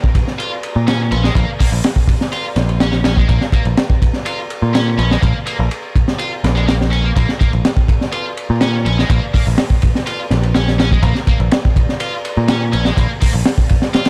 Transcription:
0.04 kick
0.15 kick, ride
0.28 snare
0.39 distorted electric guitar F4, ride
0.63 ride
0.76 picked electric bass A#2
0.88 distorted electric guitar C#4, snare, ride
1.12 picked electric bass A#1, distorted electric guitar C#4, ride
1.24 distorted electric guitar G#3, snare
1.35 picked electric bass A#1, distorted electric guitar A#3, kick, ride
1.60 distorted electric guitar A#3, kick, open hi-hat
1.72 picked electric bass A#1, ride
1.84 snare, ride
1.96 kick
2.08 kick, ride
2.21 snare
2.32 distorted electric guitar F4, ride
2.56 picked electric bass A#1, snare, ride
2.69 ride
2.80 distorted electric guitar C#4, snare, ride
2.92 snare
3.04 distorted electric guitar C#4, snare, ride
3.17 distorted electric guitar G#3, kick
3.29 picked electric bass A#1, distorted electric guitar A#3, kick, ride
3.41 snare
3.52 distorted electric guitar A#3, kick, ride
3.65 picked electric bass A#1, ride
3.77 snare, ride
3.90 kick
4.02 kick, ride
4.13 snare
4.26 distorted electric guitar F4, ride
4.50 ride
4.62 picked electric bass A#2
4.74 distorted electric guitar C#4, snare, ride
4.98 picked electric bass A#1, distorted electric guitar C#4, ride
5.11 distorted electric guitar G#3, snare
5.23 picked electric bass A#1, distorted electric guitar A#3, kick, ride
5.46 distorted electric guitar A#3, ride
5.59 picked electric bass A#1
5.71 ride
5.96 kick, ride
6.08 snare
6.19 distorted electric guitar F4, ride
6.44 picked electric bass A#1, snare, ride
6.55 distorted electric guitar G#3, ride
6.67 distorted electric guitar A#3, snare, ride
6.81 snare
6.92 distorted electric guitar C#4, ride
7.04 distorted electric guitar A#3
7.16 picked electric bass A#1, distorted electric guitar A#3, kick, ride
7.29 snare
7.40 distorted electric guitar A#3, kick, ride
7.53 picked electric bass A#1, ride
7.65 snare, ride
7.77 kick
7.88 kick, ride
8.01 snare
8.12 distorted electric guitar F4, ride
8.37 ride
8.50 picked electric bass A#2
8.61 distorted electric guitar C#4, snare, ride
8.85 picked electric bass A#1, distorted electric guitar C#4, ride
8.98 distorted electric guitar G#3, snare
9.10 picked electric bass A#1, distorted electric guitar A#3, kick, ride
9.34 distorted electric guitar A#3, kick, open hi-hat
9.47 picked electric bass A#1, ride
9.58 snare, ride
9.70 kick
9.82 kick, ride
9.95 snare
10.07 distorted electric guitar F4, ride
10.31 picked electric bass A#1, snare, ride
10.43 ride
10.55 distorted electric guitar C#4, snare, ride
10.68 snare
10.80 distorted electric guitar C#4, snare, ride
10.92 distorted electric guitar G#3, kick
11.03 picked electric bass A#1, distorted electric guitar A#3, kick, ride
11.15 snare
11.27 distorted electric guitar A#3, kick, ride
11.40 picked electric bass A#1, ride
11.51 snare, ride
11.65 kick
11.76 kick, ride
11.89 snare
12.00 distorted electric guitar F4, ride
12.25 ride
12.37 picked electric bass A#2
12.48 distorted electric guitar C#4, snare, ride
12.73 picked electric bass A#1, distorted electric guitar C#4, ride
12.85 distorted electric guitar G#3, snare
12.97 picked electric bass A#1, distorted electric guitar A#3, kick, ride
13.21 distorted electric guitar A#3, kick, open hi-hat
13.33 picked electric bass A#1, ride
13.46 snare, ride
13.58 kick
13.69 kick, ride
13.82 snare
13.94 distorted electric guitar F4, snare, ride
14.05 snare, ride

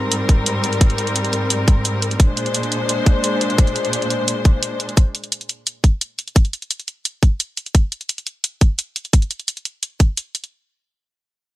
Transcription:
Already playing: string section G#2 G3 C4 A#4
0.12 closed hi-hat
0.29 kick, closed hi-hat
0.46 closed hi-hat
0.64 closed hi-hat
0.73 closed hi-hat
0.81 kick, closed hi-hat
0.90 closed hi-hat
0.98 closed hi-hat
1.07 closed hi-hat
1.16 closed hi-hat
1.25 closed hi-hat
1.33 closed hi-hat
1.50 closed hi-hat
1.68 kick, closed hi-hat
1.85 closed hi-hat
2.02 closed hi-hat
2.11 closed hi-hat
2.20 string section A#2 G#3 D4 C5, kick, closed hi-hat
2.37 closed hi-hat
2.46 closed hi-hat
2.54 closed hi-hat
2.63 closed hi-hat
2.72 closed hi-hat
2.89 closed hi-hat
3.06 kick, closed hi-hat
3.24 closed hi-hat
3.41 closed hi-hat
3.50 closed hi-hat
3.58 kick, closed hi-hat
3.67 closed hi-hat
3.76 closed hi-hat
3.85 closed hi-hat
3.93 closed hi-hat
4.02 closed hi-hat
4.10 closed hi-hat
4.28 closed hi-hat
4.45 kick, closed hi-hat
4.63 closed hi-hat
4.80 closed hi-hat
4.89 closed hi-hat
4.97 kick, closed hi-hat
5.15 closed hi-hat
5.24 closed hi-hat
5.32 closed hi-hat
5.41 closed hi-hat
5.49 closed hi-hat
5.67 closed hi-hat
5.84 kick, closed hi-hat
6.01 closed hi-hat
6.19 closed hi-hat
6.28 closed hi-hat
6.36 kick, closed hi-hat
6.45 closed hi-hat
6.53 closed hi-hat
6.62 closed hi-hat
6.71 closed hi-hat
6.80 closed hi-hat
6.88 closed hi-hat
7.05 closed hi-hat
7.23 kick, closed hi-hat
7.40 closed hi-hat
7.57 closed hi-hat
7.66 closed hi-hat
7.75 kick, closed hi-hat
7.92 closed hi-hat
8.01 closed hi-hat
8.09 closed hi-hat
8.18 closed hi-hat
8.27 closed hi-hat
8.44 closed hi-hat
8.61 kick, closed hi-hat
8.79 closed hi-hat
8.96 closed hi-hat
9.05 closed hi-hat
9.13 kick, closed hi-hat
9.22 closed hi-hat
9.31 closed hi-hat
9.40 closed hi-hat
9.48 closed hi-hat
9.57 closed hi-hat
9.65 closed hi-hat
9.83 closed hi-hat
10.00 kick, closed hi-hat
10.17 closed hi-hat
10.35 closed hi-hat
10.44 closed hi-hat

